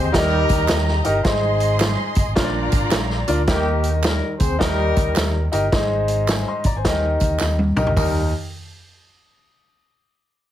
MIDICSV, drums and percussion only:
0, 0, Header, 1, 2, 480
1, 0, Start_track
1, 0, Key_signature, -3, "major"
1, 0, Tempo, 560224
1, 1067, Time_signature, 4, 2, 24, 8
1, 9005, End_track
2, 0, Start_track
2, 0, Title_t, "Drums"
2, 119, Note_on_c, 9, 36, 82
2, 121, Note_on_c, 9, 38, 122
2, 124, Note_on_c, 9, 42, 106
2, 127, Note_on_c, 9, 54, 41
2, 205, Note_off_c, 9, 36, 0
2, 206, Note_off_c, 9, 38, 0
2, 209, Note_off_c, 9, 42, 0
2, 213, Note_off_c, 9, 54, 0
2, 421, Note_on_c, 9, 54, 61
2, 426, Note_on_c, 9, 42, 83
2, 428, Note_on_c, 9, 36, 91
2, 507, Note_off_c, 9, 54, 0
2, 511, Note_off_c, 9, 42, 0
2, 513, Note_off_c, 9, 36, 0
2, 586, Note_on_c, 9, 39, 97
2, 586, Note_on_c, 9, 54, 95
2, 587, Note_on_c, 9, 42, 83
2, 592, Note_on_c, 9, 38, 111
2, 672, Note_off_c, 9, 39, 0
2, 672, Note_off_c, 9, 54, 0
2, 673, Note_off_c, 9, 42, 0
2, 677, Note_off_c, 9, 38, 0
2, 751, Note_on_c, 9, 38, 40
2, 837, Note_off_c, 9, 38, 0
2, 896, Note_on_c, 9, 42, 65
2, 898, Note_on_c, 9, 54, 47
2, 982, Note_off_c, 9, 42, 0
2, 984, Note_off_c, 9, 54, 0
2, 1066, Note_on_c, 9, 42, 77
2, 1069, Note_on_c, 9, 36, 103
2, 1069, Note_on_c, 9, 38, 109
2, 1082, Note_on_c, 9, 54, 50
2, 1152, Note_off_c, 9, 42, 0
2, 1155, Note_off_c, 9, 36, 0
2, 1155, Note_off_c, 9, 38, 0
2, 1168, Note_off_c, 9, 54, 0
2, 1373, Note_on_c, 9, 42, 74
2, 1380, Note_on_c, 9, 54, 31
2, 1458, Note_off_c, 9, 42, 0
2, 1465, Note_off_c, 9, 54, 0
2, 1544, Note_on_c, 9, 39, 99
2, 1544, Note_on_c, 9, 54, 92
2, 1547, Note_on_c, 9, 42, 69
2, 1549, Note_on_c, 9, 38, 100
2, 1630, Note_off_c, 9, 39, 0
2, 1630, Note_off_c, 9, 54, 0
2, 1633, Note_off_c, 9, 42, 0
2, 1635, Note_off_c, 9, 38, 0
2, 1843, Note_on_c, 9, 42, 72
2, 1855, Note_on_c, 9, 36, 91
2, 1856, Note_on_c, 9, 54, 51
2, 1928, Note_off_c, 9, 42, 0
2, 1941, Note_off_c, 9, 36, 0
2, 1942, Note_off_c, 9, 54, 0
2, 2024, Note_on_c, 9, 38, 109
2, 2027, Note_on_c, 9, 42, 103
2, 2028, Note_on_c, 9, 36, 87
2, 2110, Note_off_c, 9, 38, 0
2, 2113, Note_off_c, 9, 42, 0
2, 2114, Note_off_c, 9, 36, 0
2, 2328, Note_on_c, 9, 42, 77
2, 2329, Note_on_c, 9, 54, 54
2, 2336, Note_on_c, 9, 36, 94
2, 2414, Note_off_c, 9, 42, 0
2, 2415, Note_off_c, 9, 54, 0
2, 2422, Note_off_c, 9, 36, 0
2, 2493, Note_on_c, 9, 42, 83
2, 2497, Note_on_c, 9, 38, 110
2, 2497, Note_on_c, 9, 39, 102
2, 2497, Note_on_c, 9, 54, 96
2, 2579, Note_off_c, 9, 42, 0
2, 2583, Note_off_c, 9, 38, 0
2, 2583, Note_off_c, 9, 39, 0
2, 2583, Note_off_c, 9, 54, 0
2, 2658, Note_on_c, 9, 38, 37
2, 2743, Note_off_c, 9, 38, 0
2, 2807, Note_on_c, 9, 42, 75
2, 2808, Note_on_c, 9, 54, 55
2, 2893, Note_off_c, 9, 42, 0
2, 2893, Note_off_c, 9, 54, 0
2, 2976, Note_on_c, 9, 42, 73
2, 2979, Note_on_c, 9, 38, 119
2, 2980, Note_on_c, 9, 36, 101
2, 2994, Note_on_c, 9, 54, 53
2, 3062, Note_off_c, 9, 42, 0
2, 3065, Note_off_c, 9, 38, 0
2, 3066, Note_off_c, 9, 36, 0
2, 3080, Note_off_c, 9, 54, 0
2, 3286, Note_on_c, 9, 42, 74
2, 3291, Note_on_c, 9, 54, 31
2, 3372, Note_off_c, 9, 42, 0
2, 3376, Note_off_c, 9, 54, 0
2, 3459, Note_on_c, 9, 39, 90
2, 3459, Note_on_c, 9, 54, 105
2, 3464, Note_on_c, 9, 42, 69
2, 3467, Note_on_c, 9, 38, 105
2, 3545, Note_off_c, 9, 39, 0
2, 3545, Note_off_c, 9, 54, 0
2, 3550, Note_off_c, 9, 42, 0
2, 3552, Note_off_c, 9, 38, 0
2, 3767, Note_on_c, 9, 42, 74
2, 3774, Note_on_c, 9, 36, 86
2, 3775, Note_on_c, 9, 54, 53
2, 3853, Note_off_c, 9, 42, 0
2, 3859, Note_off_c, 9, 36, 0
2, 3861, Note_off_c, 9, 54, 0
2, 3947, Note_on_c, 9, 38, 102
2, 3948, Note_on_c, 9, 36, 80
2, 3950, Note_on_c, 9, 42, 97
2, 4033, Note_off_c, 9, 38, 0
2, 4034, Note_off_c, 9, 36, 0
2, 4035, Note_off_c, 9, 42, 0
2, 4254, Note_on_c, 9, 42, 73
2, 4254, Note_on_c, 9, 54, 57
2, 4258, Note_on_c, 9, 36, 103
2, 4339, Note_off_c, 9, 54, 0
2, 4340, Note_off_c, 9, 42, 0
2, 4344, Note_off_c, 9, 36, 0
2, 4421, Note_on_c, 9, 39, 102
2, 4421, Note_on_c, 9, 54, 98
2, 4424, Note_on_c, 9, 42, 76
2, 4428, Note_on_c, 9, 38, 100
2, 4507, Note_off_c, 9, 39, 0
2, 4507, Note_off_c, 9, 54, 0
2, 4510, Note_off_c, 9, 42, 0
2, 4514, Note_off_c, 9, 38, 0
2, 4734, Note_on_c, 9, 54, 56
2, 4735, Note_on_c, 9, 42, 75
2, 4820, Note_off_c, 9, 42, 0
2, 4820, Note_off_c, 9, 54, 0
2, 4903, Note_on_c, 9, 42, 75
2, 4905, Note_on_c, 9, 36, 98
2, 4906, Note_on_c, 9, 38, 100
2, 4916, Note_on_c, 9, 54, 47
2, 4989, Note_off_c, 9, 42, 0
2, 4990, Note_off_c, 9, 36, 0
2, 4992, Note_off_c, 9, 38, 0
2, 5001, Note_off_c, 9, 54, 0
2, 5210, Note_on_c, 9, 42, 75
2, 5295, Note_off_c, 9, 42, 0
2, 5382, Note_on_c, 9, 39, 95
2, 5382, Note_on_c, 9, 54, 100
2, 5385, Note_on_c, 9, 42, 67
2, 5387, Note_on_c, 9, 38, 98
2, 5468, Note_off_c, 9, 39, 0
2, 5468, Note_off_c, 9, 54, 0
2, 5471, Note_off_c, 9, 42, 0
2, 5473, Note_off_c, 9, 38, 0
2, 5687, Note_on_c, 9, 42, 67
2, 5696, Note_on_c, 9, 36, 80
2, 5700, Note_on_c, 9, 54, 52
2, 5773, Note_off_c, 9, 42, 0
2, 5782, Note_off_c, 9, 36, 0
2, 5786, Note_off_c, 9, 54, 0
2, 5866, Note_on_c, 9, 38, 106
2, 5869, Note_on_c, 9, 42, 100
2, 5870, Note_on_c, 9, 36, 79
2, 5952, Note_off_c, 9, 38, 0
2, 5955, Note_off_c, 9, 42, 0
2, 5956, Note_off_c, 9, 36, 0
2, 6170, Note_on_c, 9, 54, 57
2, 6174, Note_on_c, 9, 42, 70
2, 6180, Note_on_c, 9, 36, 89
2, 6255, Note_off_c, 9, 54, 0
2, 6260, Note_off_c, 9, 42, 0
2, 6265, Note_off_c, 9, 36, 0
2, 6337, Note_on_c, 9, 39, 103
2, 6337, Note_on_c, 9, 54, 95
2, 6347, Note_on_c, 9, 38, 57
2, 6423, Note_off_c, 9, 39, 0
2, 6423, Note_off_c, 9, 54, 0
2, 6433, Note_off_c, 9, 38, 0
2, 6500, Note_on_c, 9, 48, 54
2, 6586, Note_off_c, 9, 48, 0
2, 6653, Note_on_c, 9, 45, 86
2, 6656, Note_on_c, 9, 54, 44
2, 6739, Note_off_c, 9, 45, 0
2, 6740, Note_on_c, 9, 43, 84
2, 6741, Note_off_c, 9, 54, 0
2, 6825, Note_off_c, 9, 43, 0
2, 6825, Note_on_c, 9, 36, 81
2, 6827, Note_on_c, 9, 43, 91
2, 6827, Note_on_c, 9, 46, 86
2, 6829, Note_on_c, 9, 54, 83
2, 6911, Note_off_c, 9, 36, 0
2, 6912, Note_off_c, 9, 43, 0
2, 6912, Note_off_c, 9, 46, 0
2, 6914, Note_off_c, 9, 54, 0
2, 9005, End_track
0, 0, End_of_file